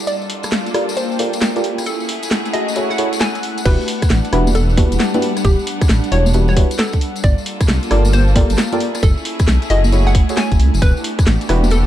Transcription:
Already playing: analog synth pad G3 D5
0.07 violin section A#3 D4 F4 A4, analog synth pad F4, synth pluck D5, closed hi-hat, tambourine
0.22 tambourine
0.30 open hi-hat
0.43 analog synth pad A#3, cross-stick, closed hi-hat, tambourine
0.52 snare, tambourine
0.66 closed hi-hat, tambourine
0.74 synth stab F4 G4 A4 A#4 D5, cross-stick, open hi-hat
0.79 analog synth pad G5
0.89 tambourine
0.97 synth pluck C5, closed hi-hat, tambourine
1.12 tambourine
1.19 synth stab F4 G4 A4 A#4 D5, open hi-hat
1.33 closed hi-hat, tambourine
1.41 snare, tambourine
1.56 synth stab F4 G4 A4 A#4 D5, closed hi-hat, tambourine
1.64 violin section A3 C#4 E4 G#4, analog synth pad E4, open hi-hat
1.78 cross-stick, closed hi-hat, tambourine
1.86 synth pluck A4, closed hi-hat, tambourine
2.00 analog synth pad F#5, tambourine
2.09 open hi-hat
2.23 analog synth pad A3, closed hi-hat, tambourine
2.31 snare, tambourine
2.45 closed hi-hat, tambourine
2.53 synth stab E4 F#4 G#4 A4 D#5, synth pluck D#5, open hi-hat
2.68 tambourine
2.75 synth stab E4 F#4 G#4 A4 C#5, closed hi-hat, tambourine
2.90 synth pluck F#5, cross-stick, tambourine
2.98 synth stab E4 F#4 G#4 A4 C#5, open hi-hat
3.13 closed hi-hat, tambourine
3.21 synth pluck G#5, snare, tambourine
3.35 closed hi-hat, tambourine
3.43 open hi-hat
3.58 closed hi-hat, tambourine
3.65 detuned saw bass E1, violin section G3 B3 D4 F#5, synth stab D4 E4 F#4 G4 B4, analog synth pad D4, synth pluck B4, kick, closed hi-hat, crash, tambourine
3.81 tambourine
3.88 open hi-hat
4.02 kick, cross-stick, closed hi-hat, tambourine
4.08 detuned saw bass A1, analog synth pad G3, snare, tambourine
4.24 closed hi-hat, tambourine
4.33 detuned saw bass E1, synth stab D4 E4 F#4 G4 B4, cross-stick, open hi-hat
4.47 tambourine, high conga
4.55 synth pluck A4, closed hi-hat, tambourine
4.69 tambourine
4.77 synth stab D4 E4 F#4 G4 B4, kick, open hi-hat, high conga
4.92 detuned saw bass E1, closed hi-hat, tambourine
5.00 snare, tambourine
5.14 synth stab D4 E4 F#4 G4 B4, closed hi-hat, tambourine, high conga
5.22 open hi-hat
5.37 cross-stick, closed hi-hat, tambourine
5.45 detuned saw bass E1, synth pluck G4, kick, closed hi-hat, tambourine
5.59 tambourine
5.67 open hi-hat
5.81 kick, cross-stick, closed hi-hat, tambourine
5.89 detuned saw bass A1, snare, tambourine
6.04 closed hi-hat, tambourine
6.12 detuned saw bass E1, synth stab D4 E4 F#4 G4 C#5, synth pluck C#5, open hi-hat
6.26 tambourine, high conga
6.33 synth stab D4 E4 F#4 G4 B4, closed hi-hat, tambourine
6.48 synth pluck C#5, cross-stick, tambourine
6.57 synth stab D4 E4 F#4 G4 B4, kick, open hi-hat
6.71 closed hi-hat, tambourine
6.79 synth pluck A4, snare, tambourine
6.93 kick, closed hi-hat, tambourine
7.01 open hi-hat
7.16 closed hi-hat, tambourine
7.24 detuned saw bass G1, violin section A#3 D4 F4 A4, analog synth pad F4, synth pluck D5, kick, closed hi-hat, tambourine
7.38 tambourine
7.46 open hi-hat
7.56 analog synth pad A#3
7.61 kick, cross-stick, closed hi-hat, tambourine
7.68 detuned saw bass C2, snare, tambourine
7.83 closed hi-hat, tambourine
7.91 detuned saw bass G1, synth stab F4 G4 A4 A#4 D5, cross-stick, open hi-hat
7.95 analog synth pad A5
8.05 tambourine, high conga
8.13 synth pluck C5, closed hi-hat, tambourine
8.28 tambourine
8.36 synth stab F4 G4 A4 A#4 D5, kick, open hi-hat, high conga
8.50 detuned saw bass G1, closed hi-hat, tambourine
8.58 snare, tambourine
8.72 synth stab F4 G4 A4 A#4 D5, closed hi-hat, tambourine, high conga
8.80 violin section A3 C#4 E4 G#4, analog synth pad E4, open hi-hat
8.95 cross-stick, closed hi-hat, tambourine
9.03 detuned saw bass F#1, synth pluck A4, kick, closed hi-hat, tambourine
9.17 tambourine
9.25 open hi-hat
9.39 kick, cross-stick, closed hi-hat, tambourine
9.48 detuned saw bass B1, snare, tambourine
9.62 analog synth pad A3, closed hi-hat, tambourine
9.70 detuned saw bass F#1, synth stab E4 F#4 G#4 A4 D#5, synth pluck D#5, analog synth pad G#5, open hi-hat
9.84 tambourine, high conga
9.92 synth stab E4 F#4 G#4 A4 C#5, closed hi-hat, tambourine
10.07 synth pluck F#5, cross-stick, tambourine
10.15 kick, open hi-hat
10.29 synth stab E4 F#4 G#4 A4 C#5, closed hi-hat, tambourine
10.37 synth pluck G#5, snare, tambourine
10.52 detuned saw bass F#1, kick, closed hi-hat, tambourine
10.59 detuned saw bass C#2, open hi-hat
10.74 detuned saw bass F#1, closed hi-hat, tambourine
10.82 detuned saw bass E1, violin section B3 D4 F#4 G4, analog synth pad D4, synth pluck B4, kick, closed hi-hat, tambourine
10.97 tambourine
11.04 open hi-hat
11.19 kick, cross-stick, closed hi-hat, tambourine
11.27 detuned saw bass A1, snare, tambourine
11.41 closed hi-hat, tambourine
11.49 detuned saw bass E1, synth stab D4 E4 F#4 G4 B4, cross-stick, open hi-hat
11.64 analog synth pad G3, tambourine, high conga
11.70 synth pluck A4, analog synth pad F#5, closed hi-hat, tambourine

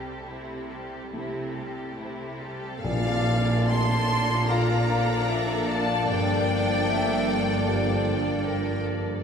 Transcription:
Already playing: grand piano C2, cello section C3, viola section G3, violin section G4 A4
0.24 cello section C3, viola section A3, violin section E4 G4
0.69 viola section G3, violin section G4 A4
1.11 cello section C3, viola section A3, grand piano A3 E4 G4, violin section E4 G4
1.53 viola section G3, violin section G4 A4
1.96 cello section C3, viola section A3, violin section E4 G4
2.40 viola section G3, violin section G4 A4
2.80 grand piano A#1, double bass section A#1, cello section A#2, french horn section F3 D4, viola section A#3 D4, violin section A4 D5 F5, tam-tam
2.84 flute D5
3.68 grand piano A3, flute A5, violin section C6
4.48 grand piano F4 D5, clarinet F5, flute F5, violin section A#5
5.30 clarinet E5
5.70 clarinet D5, flute F5, violin section A5
6.09 double bass section G1, cello section G2, grand piano G2, flute D5, violin section G5
6.90 grand piano A3, clarinet E5
7.30 clarinet D5
7.68 grand piano G4 D5
8.45 clarinet A#4

